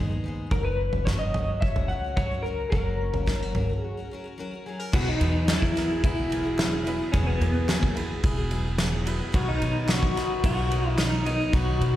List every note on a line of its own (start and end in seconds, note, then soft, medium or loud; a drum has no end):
0.00 0.41 D#2 medium
0.00 0.10 G#2 medium
0.00 0.23 G#2 medium
0.00 0.11 D#3 medium
0.00 0.11 G#3 medium
0.00 0.21 G#3 medium
0.00 0.11 B3 medium
0.00 2.45 B3 medium
0.00 1.07 D#4 soft
0.00 0.24 G#4 medium
0.00 0.22 B4 medium
0.09 0.23 G#3 soft
0.09 0.24 B3 soft
0.09 0.24 D#4 soft
0.09 0.24 G#4 medium
0.24 0.52 G#2 medium
0.24 0.51 G#3 medium
0.24 0.52 B3 medium
0.24 0.53 D#4 medium
0.24 0.54 G#4 medium
0.51 1.48 F#1 medium
0.51 0.93 F#3 medium
0.51 2.72 F#3 medium
0.51 0.94 C#4 medium
0.51 0.93 F#4 medium
0.51 0.64 A#4 medium
0.51 0.91 A#4 medium
0.51 kick medium
0.51 floor tom medium
0.64 1.08 B4 medium
0.81 2.70 A#3 medium
0.92 1.06 C#4 soft
0.92 1.07 F#4 soft
0.92 1.06 A#4 soft
0.92 floor tom medium
1.05 1.33 F#3 medium
1.05 1.35 C#4 medium
1.05 1.90 F#4 medium
1.05 1.35 F#4 medium
1.05 1.36 A#4 medium
1.05 1.18 C#5 medium
1.05 kick medium
1.05 snare medium
1.05 mid tom medium
1.19 1.60 D#5 medium
1.34 1.76 F#3 medium
1.34 1.77 C#4 medium
1.34 1.77 F#4 medium
1.34 1.62 C#5 medium
1.34 floor tom medium
1.34 mid tom medium
1.39 1.74 A#4 medium
1.61 1.86 F#1 medium
1.61 2.70 C#5 medium
1.61 1.88 E5 medium
1.61 kick medium
1.75 1.90 C#4 soft
1.75 1.91 F#4 soft
1.75 1.90 A#4 soft
1.75 floor tom medium
1.88 2.62 C#2 medium
1.88 2.03 F#3 medium
1.88 2.04 C#4 soft
1.88 2.18 F#4 soft
1.88 2.05 F#4 medium
1.88 2.18 F#5 medium
1.93 2.03 A#4 medium
2.04 2.17 C#4 soft
2.04 2.18 F#4 soft
2.04 2.18 A#4 soft
2.17 2.31 F#3 medium
2.17 2.32 C#4 medium
2.17 2.45 F#4 soft
2.17 2.32 F#4 medium
2.17 2.30 A#4 medium
2.17 2.42 C#5 medium
2.17 kick loud
2.17 floor tom medium
2.17 mid tom medium
2.31 2.45 C#4 soft
2.31 2.46 F#4 soft
2.31 2.45 A#4 soft
2.43 2.72 F#3 soft
2.43 2.73 C#4 soft
2.43 3.28 F#4 medium
2.43 2.69 A#4 medium
2.47 2.73 F#4 medium
2.47 2.74 A#4 medium
2.70 3.69 F#1 medium
2.70 7.14 F#3 medium
2.70 3.14 F#3 medium
2.70 3.15 C#4 medium
2.70 3.78 A#4 medium
2.70 kick loud
2.70 floor tom medium
2.74 3.14 F#4 medium
2.74 3.13 A#4 medium
3.01 4.91 C#4 medium
3.14 3.26 C#4 soft
3.14 3.27 F#4 soft
3.14 3.27 A#4 soft
3.14 floor tom medium
3.26 3.53 F#3 medium
3.26 3.55 C#4 medium
3.26 3.42 D#4 medium
3.26 3.56 F#4 medium
3.26 3.56 A#4 medium
3.26 kick medium
3.26 snare medium
3.42 3.55 F#4 soft
3.54 3.69 F#3 medium
3.54 3.70 C#4 medium
3.54 3.83 F#4 soft
3.54 3.70 F#4 medium
3.54 3.68 A#4 medium
3.54 floor tom medium
3.54 mid tom medium
3.69 3.99 C#4 soft
3.69 3.98 F#4 soft
3.69 3.96 A#4 soft
3.78 4.33 G#4 medium
3.84 4.11 F#4 medium
3.97 4.12 C#4 soft
3.97 4.12 F#4 soft
3.97 4.11 A#4 medium
4.11 4.25 F#3 medium
4.11 4.26 C#4 medium
4.11 4.91 F#4 soft
4.11 4.24 F#4 medium
4.11 4.23 A#4 medium
4.24 4.38 C#4 soft
4.24 4.39 F#4 soft
4.24 4.38 A#4 soft
4.38 4.52 F#3 medium
4.38 4.53 C#4 medium
4.38 4.52 F#4 medium
4.38 4.66 A#4 medium
4.38 4.50 A#4 medium
4.51 4.67 F#4 soft
4.51 4.65 A#4 soft
4.55 4.66 C#4 soft
4.66 4.91 F#3 medium
4.66 4.93 C#4 medium
4.66 4.92 F#4 medium
4.66 4.80 G#4 medium
4.66 4.94 A#4 medium
4.80 4.94 A#4 soft
4.92 5.17 E1 medium
4.92 7.10 E2 medium
4.92 5.46 E3 medium
4.92 9.30 E3 medium
4.92 5.48 F#3 medium
4.92 5.11 F#3 medium
4.92 5.11 B3 medium
4.92 9.30 B3 medium
4.92 5.48 B3 medium
4.92 5.11 E4 medium
4.92 5.49 F#4 medium
4.92 5.09 F#4 loud
4.92 9.30 F#4 medium
4.92 9.30 G#4 medium
4.92 5.12 G#4 medium
4.92 5.49 G#4 medium
4.92 5.12 B4 medium
4.92 kick loud
4.92 crash loud
5.09 5.49 D#4 medium
5.20 5.93 E2 medium
5.20 5.38 F#3 medium
5.20 5.38 B3 medium
5.20 5.38 E4 medium
5.20 5.39 G#4 medium
5.20 5.39 B4 medium
5.20 ride medium
5.48 5.76 E3 medium
5.48 5.66 F#3 medium
5.48 5.73 F#3 medium
5.48 5.66 B3 medium
5.48 5.74 B3 medium
5.48 5.67 E4 medium
5.48 6.00 E4 loud
5.48 5.75 F#4 medium
5.48 5.66 G#4 medium
5.48 5.76 G#4 medium
5.48 5.67 B4 medium
5.48 snare loud
5.48 clap loud
5.48 ride medium
5.62 kick medium
5.74 5.89 F#3 medium
5.74 5.94 F#3 medium
5.74 5.90 B3 medium
5.74 5.94 B3 medium
5.74 5.94 E4 medium
5.74 5.89 F#4 medium
5.74 5.95 G#4 medium
5.74 5.88 G#4 medium
5.74 5.95 A#4 loud
5.74 snare soft
5.74 ride medium
5.89 6.17 B3 soft
5.89 6.16 F#4 soft
5.89 6.14 G#4 medium
6.04 6.99 E1 medium
6.04 6.22 F#3 medium
6.04 6.22 B3 medium
6.04 7.12 E4 medium
6.04 6.22 E4 medium
6.04 6.22 G#4 medium
6.04 6.22 B4 medium
6.04 kick loud
6.04 ride medium
6.15 6.29 B3 soft
6.15 6.30 F#4 soft
6.15 6.30 G#4 soft
6.30 6.44 F#3 medium
6.30 6.49 F#3 medium
6.30 6.45 B3 medium
6.30 6.49 B3 medium
6.30 6.49 E4 medium
6.30 6.44 F#4 medium
6.30 6.50 G#4 medium
6.30 6.42 G#4 medium
6.30 6.50 A#4 medium
6.30 ride medium
6.43 6.58 B3 soft
6.43 6.58 F#4 soft
6.43 6.58 G#4 medium
6.57 6.72 E3 medium
6.57 6.72 F#3 medium
6.57 6.77 F#3 medium
6.57 6.73 B3 medium
6.57 6.77 B3 medium
6.57 6.77 E4 medium
6.57 6.72 F#4 medium
6.57 6.70 G#4 medium
6.57 6.77 G#4 medium
6.57 6.78 B4 medium
6.57 snare loud
6.57 clap loud
6.57 ride medium
6.71 6.85 B3 soft
6.71 6.86 F#4 medium
6.71 6.86 G#4 medium
6.85 6.99 F#3 medium
6.85 7.04 F#3 loud
6.85 7.00 B3 medium
6.85 7.05 B3 loud
6.85 7.04 E4 medium
6.85 6.99 F#4 medium
6.85 7.05 G#4 loud
6.85 6.97 G#4 medium
6.85 7.05 B4 loud
6.85 ride medium
6.99 7.14 B3 soft
6.99 7.14 F#4 medium
6.99 7.13 G#4 medium
7.12 7.38 E1 loud
7.12 9.30 E2 medium
7.12 7.67 E3 medium
7.12 7.31 F#3 medium
7.12 7.68 F#3 medium
7.12 7.32 B3 medium
7.12 7.69 B3 medium
7.12 7.27 C#4 medium
7.12 7.32 E4 medium
7.12 7.70 F#4 medium
7.12 7.32 G#4 medium
7.12 7.32 B4 medium
7.12 kick loud
7.12 ride medium
7.16 7.69 G#4 medium
7.27 7.40 B3 medium
7.41 8.13 E2 loud
7.41 7.59 F#3 medium
7.41 7.78 B3 medium
7.41 7.59 B3 medium
7.41 7.59 E4 medium
7.41 7.59 G#4 medium
7.41 7.59 B4 medium
7.41 ride medium
7.68 7.96 E3 medium
7.68 7.86 F#3 medium
7.68 7.94 F#3 medium
7.68 7.87 B3 medium
7.68 7.95 B3 medium
7.68 7.87 E4 medium
7.68 7.96 F#4 medium
7.68 7.87 G#4 medium
7.68 7.97 G#4 medium
7.68 7.87 B4 medium
7.68 snare loud
7.68 clap loud
7.68 ride medium
7.78 7.92 A#3 medium
7.83 kick medium
7.95 8.13 F#3 medium
7.95 8.37 F#3 medium
7.95 8.14 B3 medium
7.95 8.38 B3 medium
7.95 8.14 E4 medium
7.95 8.38 F#4 medium
7.95 8.14 G#4 medium
7.95 8.36 G#4 medium
7.95 8.14 B4 loud
7.95 ride medium
8.23 9.19 E1 medium
8.23 8.41 F#3 medium
8.23 8.41 B3 medium
8.23 8.42 E4 medium
8.23 8.42 G#4 medium
8.23 8.42 B4 loud
8.23 kick loud
8.23 ride medium
8.37 8.52 B3 medium
8.37 8.52 F#4 medium
8.37 8.51 G#4 medium
8.50 8.69 F#3 medium
8.50 8.65 F#3 medium
8.50 8.69 B3 medium
8.50 8.66 B3 medium
8.50 8.69 E4 medium
8.50 8.69 G#4 medium
8.50 8.69 B4 loud
8.50 ride medium
8.54 8.66 F#4 medium
8.54 8.64 G#4 medium
8.66 8.79 B3 soft
8.66 8.79 F#4 medium
8.66 8.79 G#4 medium
8.78 8.93 E3 medium
8.78 8.96 F#3 medium
8.78 8.93 F#3 medium
8.78 8.96 B3 medium
8.78 8.93 B3 medium
8.78 8.96 E4 medium
8.78 8.93 F#4 loud
8.78 8.96 G#4 medium
8.78 8.91 G#4 medium
8.78 8.97 B4 medium
8.78 snare loud
8.78 clap loud
8.78 ride medium
8.92 9.05 B3 medium
8.92 9.06 F#4 medium
8.92 9.06 G#4 medium
9.05 9.20 F#3 medium
9.05 9.24 F#3 loud
9.05 9.24 B3 loud
9.05 9.20 B3 medium
9.05 9.24 E4 loud
9.05 9.19 F#4 medium
9.05 9.24 G#4 loud
9.05 9.18 G#4 medium
9.05 9.25 B4 loud
9.05 ride medium
9.19 9.33 B3 soft
9.19 9.34 F#4 medium
9.19 9.33 G#4 medium
9.32 11.50 B1 medium
9.32 9.58 B1 loud
9.32 9.87 B2 medium
9.32 11.50 B2 medium
9.32 9.87 D#3 medium
9.32 9.51 F#3 medium
9.32 9.89 F#3 medium
9.32 11.96 B3 medium
9.32 9.89 B3 medium
9.32 9.52 B3 medium
9.32 11.96 D#4 medium
9.32 9.89 D#4 medium
9.32 9.52 D#4 medium
9.32 9.48 F#4 loud
9.32 9.52 A#4 medium
9.32 9.89 A#4 medium
9.32 9.52 B4 loud
9.32 kick loud
9.32 ride medium
9.48 9.87 D#4 medium
9.61 10.33 B2 medium
9.61 9.79 F#3 medium
9.61 9.79 B3 medium
9.61 9.79 D#4 medium
9.61 9.80 A#4 medium
9.61 9.80 C#5 medium
9.61 ride medium
9.88 10.16 B2 medium
9.88 10.16 D#3 medium
9.88 10.06 F#3 medium
9.88 10.14 F#3 medium
9.88 10.06 B3 medium
9.88 10.15 B3 medium
9.88 10.06 D#4 medium
9.88 10.16 D#4 medium
9.88 10.44 F#4 loud
9.88 10.06 A#4 medium
9.88 10.17 A#4 medium
9.88 10.07 B4 medium
9.88 snare loud
9.88 clap loud
9.88 ride medium
10.03 kick medium
10.15 10.57 F#3 medium
10.15 10.34 F#3 medium
10.15 10.34 B3 medium
10.15 10.57 B3 medium
10.15 10.34 D#4 medium
10.15 10.56 D#4 medium
10.15 10.34 A#4 medium
10.15 10.55 A#4 medium
10.15 10.34 B4 loud
10.15 snare soft
10.15 ride medium
10.43 11.39 B1 medium
10.43 10.61 F#3 medium
10.43 10.61 B3 medium
10.43 10.61 D#4 medium
10.43 10.90 F#4 loud
10.43 10.62 A#4 medium
10.43 10.62 B4 medium
10.43 kick loud
10.43 ride medium
10.57 10.69 F#3 soft
10.57 10.70 B3 soft
10.57 10.71 D#4 soft
10.57 10.71 A#4 medium
10.70 10.88 F#3 medium
10.70 10.98 F#3 medium
10.70 10.89 B3 medium
10.70 10.99 B3 medium
10.70 10.89 D#4 medium
10.70 10.99 D#4 medium
10.70 10.89 A#4 medium
10.70 10.89 C#5 medium
10.70 ride medium
10.74 10.99 A#4 medium
10.90 11.01 E4 loud
10.97 11.12 B2 medium
10.97 11.13 D#3 medium
10.97 11.16 F#3 medium
10.97 11.13 F#3 medium
10.97 11.16 B3 medium
10.97 11.14 B3 medium
10.97 11.16 D#4 medium
10.97 11.24 D#4 medium
10.97 11.13 D#4 medium
10.97 11.16 A#4 medium
10.97 11.12 A#4 medium
10.97 11.17 B4 medium
10.97 snare loud
10.97 clap medium
10.97 ride medium
11.13 11.24 F#3 soft
11.13 11.26 B3 soft
11.13 11.27 D#4 soft
11.13 11.27 A#4 medium
11.25 11.43 F#3 medium
11.25 11.40 F#3 medium
11.25 11.43 B3 medium
11.25 11.41 B3 medium
11.25 11.43 D#4 medium
11.25 11.52 D#4 medium
11.25 11.40 D#4 medium
11.25 11.44 A#4 medium
11.25 11.44 C#5 loud
11.25 ride medium
11.29 11.39 A#4 medium
11.41 11.54 F#3 soft
11.41 11.55 B3 soft
11.41 11.55 D#4 medium
11.41 11.54 A#4 medium
11.53 11.77 B1 loud
11.53 11.96 B1 medium
11.53 11.96 B2 medium
11.53 11.96 D#3 medium
11.53 11.71 F#3 medium
11.53 11.96 F#3 medium
11.53 11.71 B3 medium
11.53 11.96 B3 medium
11.53 11.71 D#4 medium
11.53 11.96 D#4 medium
11.53 11.96 F#4 loud
11.53 11.71 A#4 medium
11.53 11.72 B4 loud
11.53 kick loud
11.53 ride medium
11.57 11.96 A#4 medium
11.80 11.96 B2 medium
11.80 11.96 F#3 medium
11.80 11.96 B3 medium
11.80 11.96 D#4 medium
11.80 11.96 A#4 medium
11.80 11.96 B4 medium
11.80 ride medium